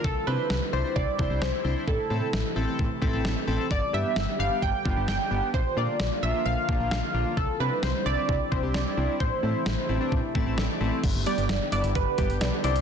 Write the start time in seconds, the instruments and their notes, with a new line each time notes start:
Already playing: analog synth pad D3
0.04 fm bass C2, analog synth pad G3 C4 E4, analog polysynth A4, kick
0.27 fm bass C3, synth keys D4 E4 C5, analog polysynth B4
0.50 fm bass C2, snare
0.73 fm bass C2, synth keys D4 E4 C5, analog polysynth C5
0.84 synth keys D4 E4 C5
0.96 fm bass C2, analog polysynth D5, kick
1.18 fm bass C2, synth keys D4 E4 C5, kick
1.30 fm bass C2, synth keys D4 E4 C5
1.42 fm bass C2, analog polysynth C5, snare
1.64 fm bass C2, synth keys D4 E4 C5
1.87 fm bass A1, analog synth pad C3 E3 A3, analog polysynth A4, kick
2.10 fm bass A2, synth keys C4 E4 A4
2.33 fm bass A1, snare
2.56 fm bass A1, synth keys C4 E4 A4
2.67 synth keys C4 E4 A4
2.79 fm bass A1, kick
3.02 fm bass A1, synth keys C4 E4 A4, kick
3.13 fm bass A1, synth keys C4 E4 A4
3.25 fm bass A1, snare
3.47 fm bass A1, synth keys C4 E4 A4
3.71 fm bass G1, analog synth pad D3 G3 B3 G4, analog polysynth D5, kick
3.93 fm bass G2, synth keys B3 D4 G4, analog polysynth E5
4.16 fm bass G1, snare
4.39 fm bass G1, synth keys B3 D4 G4, analog polysynth F5
4.50 synth keys B3 D4 G4
4.62 fm bass G1, analog polysynth G5, kick
4.85 fm bass G1, synth keys B3 D4 F4, kick
4.96 fm bass G1, synth keys B3 D4 G4
5.08 fm bass G1, analog polysynth G5, snare
5.31 fm bass G1, synth keys B3 D4 G4
5.54 fm bass A#1, analog synth pad F3 A#3 F4, analog polysynth C5, kick
5.77 fm bass A#2, synth keys A#3 D4 F4, analog polysynth D5
6.00 fm bass A#1, snare
6.22 fm bass A#1, synth keys A#3 D4 F4, analog polysynth E5
6.34 synth keys A#3 D4 F4
6.46 fm bass A#1, analog polysynth F5
6.68 fm bass A#1, synth keys A#3 D4 F4, kick
6.80 fm bass A#1, synth keys A#3 D4 F4
6.91 fm bass A#1, analog polysynth F5, snare
7.14 fm bass A#1, synth keys A#3 D4 F4
7.37 fm bass C2, analog synth pad G3 C4 E4, analog polysynth A4, kick
7.60 fm bass C3, synth keys C4 D4 E4, analog polysynth B4
7.83 fm bass C2, analog polysynth C5, snare
8.06 fm bass C2, synth keys C4 D4 E4, analog polysynth D5
8.18 synth keys C4 D4 E4
8.29 fm bass C2, kick
8.52 fm bass C2, synth keys C4 D4 E4, analog polysynth C5, kick
8.63 fm bass C2, synth keys C4 D4 G4
8.74 fm bass C2, analog polysynth D5, snare
8.97 fm bass C2, synth keys C4 D4 E4
9.20 fm bass A1, analog synth pad C3 E3 A3, analog polysynth C5, kick
9.43 fm bass A2, synth keys A3 C4 E4
9.66 fm bass A1, snare
9.89 fm bass A1, synth keys A3 C4 E4
10.00 synth keys A3 C4 D4
10.12 fm bass A1, kick
10.35 fm bass A1, synth keys A3 C4 E4 A5, kick
10.46 fm bass A1, synth keys A3 C4 E4
10.58 fm bass A1, synth keys D5, snare
10.81 fm bass A1, synth keys A3 C4 E4
11.04 fm bass G1, synth arpeggio sound D3, analog synth pad D3 G3 B3 G4, kick, closed hi-hat, crash
11.15 fm bass G1
11.26 synth arpeggio sound G3, synth keys B3 D4 G4, analog polysynth D5, closed hi-hat
11.38 fm bass G1, closed hi-hat
11.49 fm bass G1, synth arpeggio sound D4, snare, closed hi-hat
11.72 fm bass G1, synth keys B3 D4 E4, synth arpeggio sound D5, analog polysynth D5, closed hi-hat
11.84 fm bass G1, closed hi-hat
11.95 fm bass G1, synth arpeggio sound D3, analog polysynth B4, kick, closed hi-hat
12.18 fm bass G1, synth arpeggio sound G3, synth keys B3 D4 G4, kick, closed hi-hat
12.29 fm bass G1, closed hi-hat
12.41 fm bass B1, synth arpeggio sound D5, snare, closed hi-hat
12.64 fm bass C2, synth arpeggio sound C4, analog synth pad C4 E4, synth keys D4 E4 C5, analog polysynth D5, closed hi-hat
12.76 closed hi-hat